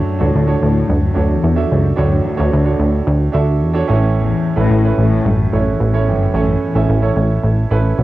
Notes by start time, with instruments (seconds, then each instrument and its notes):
Already playing: cello F#2, upright piano A2 D4 F#4 A4 C#5
0.19 analog synth bass D2, cello A2, upright piano D4 F#4 A4 C#5
0.35 analog synth bass D2
0.47 upright piano D4 F#4 A4 C#5
0.62 analog synth bass D2, cello A2
0.88 analog synth bass D2, cello F#2
1.14 analog synth bass D2, upright piano D4 F#4 A4 C#5
1.31 cello E2
1.44 analog synth bass E2
1.55 upright piano D4 F#4 A4 E5
1.70 analog synth bass C#2, cello F#2
1.96 analog synth bass D2, cello F#2, upright piano A2 D4 F#4 A4 C#5
2.25 cello D2
2.37 analog synth bass D2, upright piano D4 F#4 A4 C#5
2.53 analog synth bass D2
2.65 upright piano D4 F#4 A4 C#5
2.79 analog synth bass D2
3.07 analog synth bass D2
3.32 analog synth bass D2, upright piano D4 F#4 A4 E5
3.61 analog synth bass E2
3.73 upright piano D4 F#4 A4 C#5
3.88 analog synth bass A1, upright piano A2 E3 C#4 E4 A4 C#5
4.17 cello E2
4.56 analog synth bass A1, cello A2, upright piano C#4 E4 A4 B4
4.70 analog synth bass A1
4.84 upright piano C#4 E4 A4 B4
4.98 analog synth bass A1, cello A2
5.25 analog synth bass A1, cello F#2
5.52 analog synth bass A1, upright piano C#4 E4 A4 C#5
5.69 cello E2
5.80 analog synth bass A1
5.93 upright piano C#4 E4 A4 C#5
6.07 analog synth bass G1, upright piano A2 E3
6.12 cello F#2
6.34 analog synth bass A1, cello F#2, upright piano C#4 E4 A4 C#5
6.65 cello E2
6.75 analog synth bass A1, upright piano C#4 E4 A4 E5
6.89 analog synth bass A1
7.02 upright piano C#4 E4 A4 C#5
7.16 analog synth bass A1
7.43 analog synth bass A1
7.70 analog synth bass A1, upright piano C#4 E4 A4 B4
7.98 analog synth bass B1